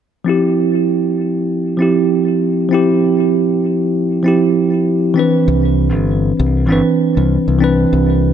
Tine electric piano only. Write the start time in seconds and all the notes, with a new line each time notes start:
0.24 F3 C4 E4
0.29 G4
1.77 F3 C4 E4
1.82 G4
2.69 F3 C4 E4
2.74 G4
4.23 F3 C4 E4
4.28 G4
5.14 E3 C4 D4
5.19 B4
6.67 E3 C4 D4
6.72 B4
7.59 E3 C4 D4
7.64 B4